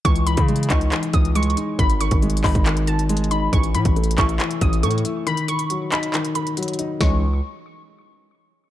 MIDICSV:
0, 0, Header, 1, 5, 480
1, 0, Start_track
1, 0, Key_signature, 4, "minor"
1, 0, Tempo, 434783
1, 55, Time_signature, 4, 2, 24, 8
1, 9605, End_track
2, 0, Start_track
2, 0, Title_t, "Synth pluck"
2, 0, Program_c, 0, 84
2, 54, Note_on_c, 0, 85, 110
2, 271, Note_off_c, 0, 85, 0
2, 294, Note_on_c, 0, 83, 93
2, 746, Note_off_c, 0, 83, 0
2, 775, Note_on_c, 0, 85, 77
2, 1226, Note_off_c, 0, 85, 0
2, 1254, Note_on_c, 0, 87, 87
2, 1471, Note_off_c, 0, 87, 0
2, 1496, Note_on_c, 0, 85, 84
2, 1947, Note_off_c, 0, 85, 0
2, 1975, Note_on_c, 0, 83, 105
2, 2191, Note_off_c, 0, 83, 0
2, 2215, Note_on_c, 0, 85, 87
2, 2666, Note_off_c, 0, 85, 0
2, 2696, Note_on_c, 0, 83, 79
2, 3147, Note_off_c, 0, 83, 0
2, 3176, Note_on_c, 0, 81, 91
2, 3627, Note_off_c, 0, 81, 0
2, 3655, Note_on_c, 0, 83, 85
2, 3871, Note_off_c, 0, 83, 0
2, 3895, Note_on_c, 0, 85, 96
2, 4111, Note_off_c, 0, 85, 0
2, 4136, Note_on_c, 0, 83, 90
2, 4587, Note_off_c, 0, 83, 0
2, 4616, Note_on_c, 0, 85, 79
2, 5066, Note_off_c, 0, 85, 0
2, 5096, Note_on_c, 0, 87, 80
2, 5312, Note_off_c, 0, 87, 0
2, 5336, Note_on_c, 0, 85, 90
2, 5786, Note_off_c, 0, 85, 0
2, 5815, Note_on_c, 0, 83, 119
2, 6031, Note_off_c, 0, 83, 0
2, 6055, Note_on_c, 0, 85, 94
2, 6506, Note_off_c, 0, 85, 0
2, 6535, Note_on_c, 0, 83, 84
2, 6986, Note_off_c, 0, 83, 0
2, 7014, Note_on_c, 0, 83, 70
2, 7691, Note_off_c, 0, 83, 0
2, 7736, Note_on_c, 0, 85, 87
2, 7958, Note_off_c, 0, 85, 0
2, 9605, End_track
3, 0, Start_track
3, 0, Title_t, "Grand piano"
3, 0, Program_c, 1, 0
3, 56, Note_on_c, 1, 52, 93
3, 250, Control_c, 1, 64, 127
3, 280, Note_off_c, 1, 52, 0
3, 296, Note_on_c, 1, 52, 71
3, 535, Note_on_c, 1, 56, 81
3, 775, Note_on_c, 1, 63, 94
3, 997, Note_off_c, 1, 52, 0
3, 1014, Note_on_c, 1, 52, 77
3, 1239, Note_off_c, 1, 52, 0
3, 1255, Note_on_c, 1, 52, 73
3, 1478, Note_off_c, 1, 56, 0
3, 1495, Note_on_c, 1, 56, 85
3, 1719, Note_off_c, 1, 63, 0
3, 1735, Note_on_c, 1, 63, 82
3, 1975, Note_off_c, 1, 52, 0
3, 1975, Note_off_c, 1, 56, 0
3, 1975, Note_off_c, 1, 63, 0
3, 1976, Note_on_c, 1, 51, 88
3, 1990, Control_c, 1, 64, 0
3, 2200, Note_off_c, 1, 51, 0
3, 2215, Control_c, 1, 64, 127
3, 2217, Note_on_c, 1, 51, 72
3, 2454, Note_on_c, 1, 56, 79
3, 2695, Note_on_c, 1, 63, 106
3, 2917, Note_off_c, 1, 51, 0
3, 2934, Note_on_c, 1, 51, 81
3, 3159, Note_off_c, 1, 51, 0
3, 3175, Note_on_c, 1, 51, 72
3, 3399, Note_off_c, 1, 56, 0
3, 3416, Note_on_c, 1, 56, 94
3, 3638, Note_off_c, 1, 63, 0
3, 3655, Note_on_c, 1, 63, 83
3, 3894, Note_on_c, 1, 52, 91
3, 3895, Note_off_c, 1, 51, 0
3, 3895, Note_off_c, 1, 56, 0
3, 3895, Note_off_c, 1, 63, 0
3, 3907, Control_c, 1, 64, 0
3, 4115, Control_c, 1, 64, 127
3, 4118, Note_off_c, 1, 52, 0
3, 4135, Note_on_c, 1, 52, 79
3, 4377, Note_on_c, 1, 57, 69
3, 4616, Note_on_c, 1, 64, 104
3, 4838, Note_off_c, 1, 52, 0
3, 4854, Note_on_c, 1, 52, 76
3, 5078, Note_off_c, 1, 52, 0
3, 5095, Note_on_c, 1, 52, 82
3, 5317, Note_off_c, 1, 57, 0
3, 5334, Note_on_c, 1, 57, 90
3, 5559, Note_off_c, 1, 64, 0
3, 5575, Note_on_c, 1, 64, 84
3, 5814, Note_off_c, 1, 57, 0
3, 5814, Note_on_c, 1, 51, 101
3, 5815, Note_off_c, 1, 52, 0
3, 5815, Note_off_c, 1, 64, 0
3, 5828, Control_c, 1, 64, 0
3, 5996, Control_c, 1, 64, 127
3, 6039, Note_off_c, 1, 51, 0
3, 6056, Note_on_c, 1, 51, 77
3, 6296, Note_on_c, 1, 54, 73
3, 6534, Note_on_c, 1, 63, 104
3, 6758, Note_off_c, 1, 51, 0
3, 6774, Note_on_c, 1, 51, 84
3, 6998, Note_off_c, 1, 51, 0
3, 7015, Note_on_c, 1, 51, 71
3, 7237, Note_off_c, 1, 54, 0
3, 7254, Note_on_c, 1, 54, 87
3, 7479, Note_off_c, 1, 63, 0
3, 7495, Note_on_c, 1, 63, 85
3, 7718, Note_off_c, 1, 63, 0
3, 7734, Note_off_c, 1, 54, 0
3, 7734, Note_on_c, 1, 56, 84
3, 7735, Note_off_c, 1, 51, 0
3, 7735, Note_on_c, 1, 52, 90
3, 7735, Note_on_c, 1, 61, 82
3, 7735, Note_on_c, 1, 63, 95
3, 7751, Control_c, 1, 64, 0
3, 7958, Note_off_c, 1, 52, 0
3, 7958, Note_off_c, 1, 56, 0
3, 7958, Note_off_c, 1, 61, 0
3, 7958, Note_off_c, 1, 63, 0
3, 9605, End_track
4, 0, Start_track
4, 0, Title_t, "808-style bass"
4, 0, Program_c, 2, 38
4, 55, Note_on_c, 2, 37, 108
4, 400, Note_off_c, 2, 37, 0
4, 414, Note_on_c, 2, 49, 104
4, 760, Note_off_c, 2, 49, 0
4, 775, Note_on_c, 2, 37, 102
4, 1005, Note_off_c, 2, 37, 0
4, 1255, Note_on_c, 2, 37, 105
4, 1716, Note_off_c, 2, 37, 0
4, 1976, Note_on_c, 2, 32, 113
4, 2321, Note_off_c, 2, 32, 0
4, 2335, Note_on_c, 2, 32, 109
4, 2681, Note_off_c, 2, 32, 0
4, 2696, Note_on_c, 2, 32, 107
4, 2811, Note_off_c, 2, 32, 0
4, 2816, Note_on_c, 2, 32, 104
4, 3852, Note_off_c, 2, 32, 0
4, 3895, Note_on_c, 2, 33, 108
4, 4135, Note_on_c, 2, 45, 98
4, 4152, Note_off_c, 2, 33, 0
4, 4249, Note_off_c, 2, 45, 0
4, 4255, Note_on_c, 2, 33, 107
4, 4600, Note_off_c, 2, 33, 0
4, 4616, Note_on_c, 2, 33, 103
4, 4846, Note_off_c, 2, 33, 0
4, 5095, Note_on_c, 2, 33, 106
4, 5335, Note_on_c, 2, 45, 101
4, 5351, Note_off_c, 2, 33, 0
4, 5563, Note_off_c, 2, 45, 0
4, 7735, Note_on_c, 2, 37, 113
4, 8181, Note_off_c, 2, 37, 0
4, 9605, End_track
5, 0, Start_track
5, 0, Title_t, "Drums"
5, 55, Note_on_c, 9, 36, 108
5, 55, Note_on_c, 9, 42, 77
5, 165, Note_off_c, 9, 36, 0
5, 165, Note_off_c, 9, 42, 0
5, 172, Note_on_c, 9, 42, 57
5, 282, Note_off_c, 9, 42, 0
5, 294, Note_on_c, 9, 42, 87
5, 404, Note_off_c, 9, 42, 0
5, 410, Note_on_c, 9, 42, 65
5, 414, Note_on_c, 9, 36, 97
5, 521, Note_off_c, 9, 42, 0
5, 525, Note_off_c, 9, 36, 0
5, 535, Note_on_c, 9, 42, 44
5, 615, Note_off_c, 9, 42, 0
5, 615, Note_on_c, 9, 42, 57
5, 695, Note_off_c, 9, 42, 0
5, 695, Note_on_c, 9, 42, 76
5, 773, Note_off_c, 9, 42, 0
5, 773, Note_on_c, 9, 42, 71
5, 775, Note_on_c, 9, 39, 91
5, 776, Note_on_c, 9, 36, 98
5, 884, Note_off_c, 9, 42, 0
5, 885, Note_off_c, 9, 39, 0
5, 886, Note_off_c, 9, 36, 0
5, 896, Note_on_c, 9, 42, 47
5, 1006, Note_off_c, 9, 42, 0
5, 1014, Note_on_c, 9, 39, 117
5, 1016, Note_on_c, 9, 42, 73
5, 1124, Note_off_c, 9, 39, 0
5, 1126, Note_off_c, 9, 42, 0
5, 1134, Note_on_c, 9, 42, 56
5, 1245, Note_off_c, 9, 42, 0
5, 1253, Note_on_c, 9, 42, 78
5, 1255, Note_on_c, 9, 36, 95
5, 1363, Note_off_c, 9, 42, 0
5, 1365, Note_off_c, 9, 36, 0
5, 1380, Note_on_c, 9, 42, 54
5, 1491, Note_off_c, 9, 42, 0
5, 1495, Note_on_c, 9, 42, 83
5, 1575, Note_off_c, 9, 42, 0
5, 1575, Note_on_c, 9, 42, 62
5, 1655, Note_off_c, 9, 42, 0
5, 1655, Note_on_c, 9, 42, 45
5, 1735, Note_off_c, 9, 42, 0
5, 1735, Note_on_c, 9, 42, 77
5, 1845, Note_off_c, 9, 42, 0
5, 1975, Note_on_c, 9, 36, 110
5, 1976, Note_on_c, 9, 42, 82
5, 2086, Note_off_c, 9, 36, 0
5, 2087, Note_off_c, 9, 42, 0
5, 2093, Note_on_c, 9, 42, 59
5, 2203, Note_off_c, 9, 42, 0
5, 2214, Note_on_c, 9, 42, 93
5, 2325, Note_off_c, 9, 42, 0
5, 2331, Note_on_c, 9, 42, 62
5, 2335, Note_on_c, 9, 36, 95
5, 2442, Note_off_c, 9, 42, 0
5, 2445, Note_off_c, 9, 36, 0
5, 2455, Note_on_c, 9, 42, 44
5, 2536, Note_off_c, 9, 42, 0
5, 2536, Note_on_c, 9, 42, 60
5, 2615, Note_off_c, 9, 42, 0
5, 2615, Note_on_c, 9, 42, 81
5, 2694, Note_on_c, 9, 46, 79
5, 2695, Note_on_c, 9, 39, 90
5, 2696, Note_on_c, 9, 36, 105
5, 2726, Note_off_c, 9, 42, 0
5, 2804, Note_off_c, 9, 46, 0
5, 2806, Note_off_c, 9, 36, 0
5, 2806, Note_off_c, 9, 39, 0
5, 2816, Note_on_c, 9, 36, 103
5, 2816, Note_on_c, 9, 42, 46
5, 2926, Note_off_c, 9, 42, 0
5, 2927, Note_off_c, 9, 36, 0
5, 2935, Note_on_c, 9, 39, 117
5, 2937, Note_on_c, 9, 42, 72
5, 3045, Note_off_c, 9, 39, 0
5, 3047, Note_off_c, 9, 42, 0
5, 3055, Note_on_c, 9, 42, 57
5, 3165, Note_off_c, 9, 42, 0
5, 3173, Note_on_c, 9, 42, 81
5, 3284, Note_off_c, 9, 42, 0
5, 3301, Note_on_c, 9, 42, 55
5, 3412, Note_off_c, 9, 42, 0
5, 3416, Note_on_c, 9, 42, 79
5, 3496, Note_off_c, 9, 42, 0
5, 3496, Note_on_c, 9, 42, 64
5, 3576, Note_off_c, 9, 42, 0
5, 3576, Note_on_c, 9, 42, 45
5, 3655, Note_off_c, 9, 42, 0
5, 3655, Note_on_c, 9, 42, 77
5, 3765, Note_off_c, 9, 42, 0
5, 3896, Note_on_c, 9, 36, 110
5, 3896, Note_on_c, 9, 42, 76
5, 4006, Note_off_c, 9, 36, 0
5, 4006, Note_off_c, 9, 42, 0
5, 4013, Note_on_c, 9, 42, 57
5, 4123, Note_off_c, 9, 42, 0
5, 4135, Note_on_c, 9, 42, 89
5, 4245, Note_off_c, 9, 42, 0
5, 4252, Note_on_c, 9, 42, 64
5, 4255, Note_on_c, 9, 36, 97
5, 4362, Note_off_c, 9, 42, 0
5, 4366, Note_off_c, 9, 36, 0
5, 4376, Note_on_c, 9, 42, 44
5, 4456, Note_off_c, 9, 42, 0
5, 4456, Note_on_c, 9, 42, 61
5, 4535, Note_off_c, 9, 42, 0
5, 4535, Note_on_c, 9, 42, 76
5, 4614, Note_off_c, 9, 42, 0
5, 4614, Note_on_c, 9, 42, 76
5, 4616, Note_on_c, 9, 36, 102
5, 4616, Note_on_c, 9, 39, 92
5, 4724, Note_off_c, 9, 42, 0
5, 4726, Note_off_c, 9, 39, 0
5, 4727, Note_off_c, 9, 36, 0
5, 4736, Note_on_c, 9, 42, 47
5, 4847, Note_off_c, 9, 42, 0
5, 4854, Note_on_c, 9, 39, 114
5, 4856, Note_on_c, 9, 42, 70
5, 4964, Note_off_c, 9, 39, 0
5, 4966, Note_off_c, 9, 42, 0
5, 4975, Note_on_c, 9, 42, 57
5, 5085, Note_off_c, 9, 42, 0
5, 5093, Note_on_c, 9, 42, 82
5, 5095, Note_on_c, 9, 36, 100
5, 5204, Note_off_c, 9, 42, 0
5, 5206, Note_off_c, 9, 36, 0
5, 5221, Note_on_c, 9, 42, 54
5, 5331, Note_off_c, 9, 42, 0
5, 5335, Note_on_c, 9, 42, 79
5, 5416, Note_off_c, 9, 42, 0
5, 5416, Note_on_c, 9, 42, 65
5, 5496, Note_off_c, 9, 42, 0
5, 5496, Note_on_c, 9, 42, 45
5, 5574, Note_off_c, 9, 42, 0
5, 5574, Note_on_c, 9, 42, 78
5, 5685, Note_off_c, 9, 42, 0
5, 5815, Note_on_c, 9, 42, 80
5, 5925, Note_off_c, 9, 42, 0
5, 5932, Note_on_c, 9, 42, 56
5, 6042, Note_off_c, 9, 42, 0
5, 6054, Note_on_c, 9, 42, 88
5, 6164, Note_off_c, 9, 42, 0
5, 6170, Note_on_c, 9, 42, 62
5, 6281, Note_off_c, 9, 42, 0
5, 6293, Note_on_c, 9, 42, 74
5, 6404, Note_off_c, 9, 42, 0
5, 6534, Note_on_c, 9, 46, 77
5, 6535, Note_on_c, 9, 39, 90
5, 6535, Note_on_c, 9, 42, 62
5, 6644, Note_off_c, 9, 46, 0
5, 6646, Note_off_c, 9, 39, 0
5, 6646, Note_off_c, 9, 42, 0
5, 6656, Note_on_c, 9, 42, 63
5, 6766, Note_off_c, 9, 42, 0
5, 6775, Note_on_c, 9, 39, 116
5, 6777, Note_on_c, 9, 42, 72
5, 6885, Note_off_c, 9, 39, 0
5, 6887, Note_off_c, 9, 42, 0
5, 6895, Note_on_c, 9, 42, 57
5, 7006, Note_off_c, 9, 42, 0
5, 7013, Note_on_c, 9, 42, 81
5, 7123, Note_off_c, 9, 42, 0
5, 7140, Note_on_c, 9, 42, 54
5, 7251, Note_off_c, 9, 42, 0
5, 7254, Note_on_c, 9, 42, 81
5, 7315, Note_off_c, 9, 42, 0
5, 7315, Note_on_c, 9, 42, 70
5, 7375, Note_off_c, 9, 42, 0
5, 7375, Note_on_c, 9, 42, 58
5, 7435, Note_off_c, 9, 42, 0
5, 7435, Note_on_c, 9, 42, 45
5, 7494, Note_off_c, 9, 42, 0
5, 7494, Note_on_c, 9, 42, 76
5, 7605, Note_off_c, 9, 42, 0
5, 7735, Note_on_c, 9, 36, 110
5, 7735, Note_on_c, 9, 38, 110
5, 7845, Note_off_c, 9, 36, 0
5, 7845, Note_off_c, 9, 38, 0
5, 9605, End_track
0, 0, End_of_file